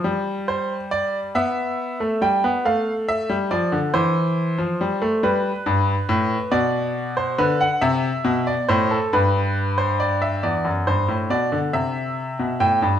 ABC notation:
X:1
M:6/8
L:1/16
Q:3/8=46
K:C
V:1 name="Grand piano"
z2 c2 d2 e4 g2 | f2 e2 d2 c6 | B6 d3 c B ^f | e3 d c A B3 c d e |
d2 c2 d2 e4 g2 |]
V:2 name="Grand piano" clef=bass
G,6 B,3 A, G, B, | A,3 G, F, D, E,3 F, G, A, | G,2 G,,2 A,,2 B,,4 D,2 | C,2 B,,2 A,,2 G,,6 |
E,, ^F,, G,, A,, B,, D, C,3 B,, A,, G,, |]